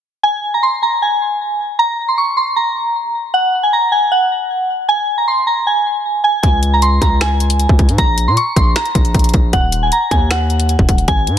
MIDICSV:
0, 0, Header, 1, 4, 480
1, 0, Start_track
1, 0, Tempo, 387097
1, 299, Time_signature, 4, 2, 24, 8
1, 14120, End_track
2, 0, Start_track
2, 0, Title_t, "Synth bell"
2, 0, Program_c, 0, 98
2, 290, Note_on_c, 0, 80, 104
2, 633, Note_off_c, 0, 80, 0
2, 671, Note_on_c, 0, 82, 78
2, 770, Note_off_c, 0, 82, 0
2, 780, Note_on_c, 0, 84, 81
2, 988, Note_off_c, 0, 84, 0
2, 1025, Note_on_c, 0, 82, 85
2, 1231, Note_off_c, 0, 82, 0
2, 1268, Note_on_c, 0, 80, 79
2, 2174, Note_off_c, 0, 80, 0
2, 2219, Note_on_c, 0, 82, 110
2, 2557, Note_off_c, 0, 82, 0
2, 2585, Note_on_c, 0, 84, 72
2, 2687, Note_off_c, 0, 84, 0
2, 2700, Note_on_c, 0, 85, 82
2, 2908, Note_off_c, 0, 85, 0
2, 2937, Note_on_c, 0, 84, 82
2, 3146, Note_off_c, 0, 84, 0
2, 3178, Note_on_c, 0, 82, 85
2, 4089, Note_off_c, 0, 82, 0
2, 4139, Note_on_c, 0, 78, 92
2, 4478, Note_off_c, 0, 78, 0
2, 4505, Note_on_c, 0, 80, 68
2, 4607, Note_off_c, 0, 80, 0
2, 4626, Note_on_c, 0, 82, 85
2, 4832, Note_off_c, 0, 82, 0
2, 4859, Note_on_c, 0, 80, 87
2, 5068, Note_off_c, 0, 80, 0
2, 5104, Note_on_c, 0, 78, 84
2, 6012, Note_off_c, 0, 78, 0
2, 6058, Note_on_c, 0, 80, 99
2, 6397, Note_off_c, 0, 80, 0
2, 6421, Note_on_c, 0, 82, 65
2, 6525, Note_off_c, 0, 82, 0
2, 6544, Note_on_c, 0, 84, 78
2, 6750, Note_off_c, 0, 84, 0
2, 6781, Note_on_c, 0, 82, 83
2, 6989, Note_off_c, 0, 82, 0
2, 7028, Note_on_c, 0, 80, 81
2, 7701, Note_off_c, 0, 80, 0
2, 7736, Note_on_c, 0, 80, 82
2, 7946, Note_off_c, 0, 80, 0
2, 7971, Note_on_c, 0, 80, 105
2, 8313, Note_off_c, 0, 80, 0
2, 8351, Note_on_c, 0, 82, 83
2, 8450, Note_off_c, 0, 82, 0
2, 8459, Note_on_c, 0, 84, 87
2, 8668, Note_off_c, 0, 84, 0
2, 8704, Note_on_c, 0, 82, 87
2, 8911, Note_off_c, 0, 82, 0
2, 8948, Note_on_c, 0, 80, 85
2, 9854, Note_off_c, 0, 80, 0
2, 9898, Note_on_c, 0, 82, 112
2, 10237, Note_off_c, 0, 82, 0
2, 10265, Note_on_c, 0, 84, 79
2, 10367, Note_off_c, 0, 84, 0
2, 10379, Note_on_c, 0, 85, 89
2, 10588, Note_off_c, 0, 85, 0
2, 10618, Note_on_c, 0, 84, 84
2, 10827, Note_off_c, 0, 84, 0
2, 10859, Note_on_c, 0, 82, 92
2, 11769, Note_off_c, 0, 82, 0
2, 11820, Note_on_c, 0, 78, 98
2, 12158, Note_off_c, 0, 78, 0
2, 12186, Note_on_c, 0, 80, 72
2, 12287, Note_off_c, 0, 80, 0
2, 12305, Note_on_c, 0, 82, 86
2, 12511, Note_off_c, 0, 82, 0
2, 12540, Note_on_c, 0, 80, 90
2, 12748, Note_off_c, 0, 80, 0
2, 12784, Note_on_c, 0, 78, 86
2, 13692, Note_off_c, 0, 78, 0
2, 13738, Note_on_c, 0, 80, 104
2, 14077, Note_off_c, 0, 80, 0
2, 14120, End_track
3, 0, Start_track
3, 0, Title_t, "808-style bass"
3, 0, Program_c, 1, 38
3, 7979, Note_on_c, 1, 37, 110
3, 8670, Note_off_c, 1, 37, 0
3, 8699, Note_on_c, 1, 37, 107
3, 9506, Note_off_c, 1, 37, 0
3, 9540, Note_on_c, 1, 37, 107
3, 9780, Note_on_c, 1, 44, 101
3, 9798, Note_off_c, 1, 37, 0
3, 9893, Note_off_c, 1, 44, 0
3, 9900, Note_on_c, 1, 34, 103
3, 10260, Note_on_c, 1, 46, 101
3, 10278, Note_off_c, 1, 34, 0
3, 10374, Note_off_c, 1, 46, 0
3, 10620, Note_on_c, 1, 34, 106
3, 10850, Note_off_c, 1, 34, 0
3, 11099, Note_on_c, 1, 34, 105
3, 11330, Note_off_c, 1, 34, 0
3, 11340, Note_on_c, 1, 34, 108
3, 11570, Note_off_c, 1, 34, 0
3, 11580, Note_on_c, 1, 34, 109
3, 11810, Note_off_c, 1, 34, 0
3, 11819, Note_on_c, 1, 27, 109
3, 12280, Note_off_c, 1, 27, 0
3, 12540, Note_on_c, 1, 39, 107
3, 13346, Note_off_c, 1, 39, 0
3, 13379, Note_on_c, 1, 27, 99
3, 13725, Note_off_c, 1, 27, 0
3, 13740, Note_on_c, 1, 32, 110
3, 13980, Note_on_c, 1, 44, 105
3, 13998, Note_off_c, 1, 32, 0
3, 14120, Note_off_c, 1, 44, 0
3, 14120, End_track
4, 0, Start_track
4, 0, Title_t, "Drums"
4, 7979, Note_on_c, 9, 36, 119
4, 7979, Note_on_c, 9, 42, 72
4, 8103, Note_off_c, 9, 36, 0
4, 8103, Note_off_c, 9, 42, 0
4, 8217, Note_on_c, 9, 42, 78
4, 8341, Note_off_c, 9, 42, 0
4, 8458, Note_on_c, 9, 42, 81
4, 8582, Note_off_c, 9, 42, 0
4, 8700, Note_on_c, 9, 36, 90
4, 8702, Note_on_c, 9, 42, 90
4, 8824, Note_off_c, 9, 36, 0
4, 8826, Note_off_c, 9, 42, 0
4, 8940, Note_on_c, 9, 38, 121
4, 8943, Note_on_c, 9, 42, 77
4, 8945, Note_on_c, 9, 26, 99
4, 9064, Note_off_c, 9, 38, 0
4, 9067, Note_off_c, 9, 42, 0
4, 9069, Note_off_c, 9, 26, 0
4, 9180, Note_on_c, 9, 42, 53
4, 9300, Note_off_c, 9, 42, 0
4, 9300, Note_on_c, 9, 42, 94
4, 9418, Note_off_c, 9, 42, 0
4, 9418, Note_on_c, 9, 42, 79
4, 9540, Note_on_c, 9, 36, 93
4, 9542, Note_off_c, 9, 42, 0
4, 9659, Note_on_c, 9, 42, 62
4, 9660, Note_off_c, 9, 36, 0
4, 9660, Note_on_c, 9, 36, 107
4, 9780, Note_off_c, 9, 42, 0
4, 9780, Note_on_c, 9, 42, 63
4, 9784, Note_off_c, 9, 36, 0
4, 9899, Note_off_c, 9, 42, 0
4, 9899, Note_on_c, 9, 42, 73
4, 9900, Note_on_c, 9, 36, 118
4, 10023, Note_off_c, 9, 42, 0
4, 10024, Note_off_c, 9, 36, 0
4, 10139, Note_on_c, 9, 42, 77
4, 10263, Note_off_c, 9, 42, 0
4, 10379, Note_on_c, 9, 42, 82
4, 10503, Note_off_c, 9, 42, 0
4, 10620, Note_on_c, 9, 36, 87
4, 10622, Note_on_c, 9, 42, 89
4, 10744, Note_off_c, 9, 36, 0
4, 10746, Note_off_c, 9, 42, 0
4, 10860, Note_on_c, 9, 38, 118
4, 10860, Note_on_c, 9, 42, 66
4, 10865, Note_on_c, 9, 26, 98
4, 10980, Note_off_c, 9, 42, 0
4, 10980, Note_on_c, 9, 42, 67
4, 10984, Note_off_c, 9, 38, 0
4, 10989, Note_off_c, 9, 26, 0
4, 11099, Note_on_c, 9, 36, 97
4, 11100, Note_off_c, 9, 42, 0
4, 11100, Note_on_c, 9, 42, 90
4, 11220, Note_off_c, 9, 42, 0
4, 11220, Note_on_c, 9, 42, 55
4, 11223, Note_off_c, 9, 36, 0
4, 11340, Note_off_c, 9, 42, 0
4, 11340, Note_on_c, 9, 36, 101
4, 11340, Note_on_c, 9, 42, 68
4, 11399, Note_off_c, 9, 42, 0
4, 11399, Note_on_c, 9, 42, 69
4, 11459, Note_off_c, 9, 42, 0
4, 11459, Note_on_c, 9, 42, 69
4, 11464, Note_off_c, 9, 36, 0
4, 11519, Note_off_c, 9, 42, 0
4, 11519, Note_on_c, 9, 42, 68
4, 11576, Note_off_c, 9, 42, 0
4, 11576, Note_on_c, 9, 42, 73
4, 11579, Note_on_c, 9, 36, 105
4, 11700, Note_off_c, 9, 42, 0
4, 11703, Note_off_c, 9, 36, 0
4, 11819, Note_on_c, 9, 36, 117
4, 11819, Note_on_c, 9, 42, 72
4, 11943, Note_off_c, 9, 36, 0
4, 11943, Note_off_c, 9, 42, 0
4, 12058, Note_on_c, 9, 42, 77
4, 12182, Note_off_c, 9, 42, 0
4, 12298, Note_on_c, 9, 42, 82
4, 12422, Note_off_c, 9, 42, 0
4, 12539, Note_on_c, 9, 36, 90
4, 12542, Note_on_c, 9, 42, 92
4, 12663, Note_off_c, 9, 36, 0
4, 12666, Note_off_c, 9, 42, 0
4, 12779, Note_on_c, 9, 38, 120
4, 12783, Note_on_c, 9, 42, 76
4, 12784, Note_on_c, 9, 26, 96
4, 12903, Note_off_c, 9, 38, 0
4, 12907, Note_off_c, 9, 42, 0
4, 12908, Note_off_c, 9, 26, 0
4, 13019, Note_on_c, 9, 42, 55
4, 13139, Note_off_c, 9, 42, 0
4, 13139, Note_on_c, 9, 42, 93
4, 13257, Note_off_c, 9, 42, 0
4, 13257, Note_on_c, 9, 42, 80
4, 13379, Note_on_c, 9, 36, 92
4, 13381, Note_off_c, 9, 42, 0
4, 13499, Note_off_c, 9, 36, 0
4, 13499, Note_on_c, 9, 36, 107
4, 13499, Note_on_c, 9, 42, 65
4, 13619, Note_off_c, 9, 42, 0
4, 13619, Note_on_c, 9, 42, 60
4, 13623, Note_off_c, 9, 36, 0
4, 13738, Note_off_c, 9, 42, 0
4, 13738, Note_on_c, 9, 42, 72
4, 13739, Note_on_c, 9, 36, 118
4, 13862, Note_off_c, 9, 42, 0
4, 13863, Note_off_c, 9, 36, 0
4, 13978, Note_on_c, 9, 46, 82
4, 13979, Note_on_c, 9, 42, 46
4, 14102, Note_off_c, 9, 46, 0
4, 14103, Note_off_c, 9, 42, 0
4, 14120, End_track
0, 0, End_of_file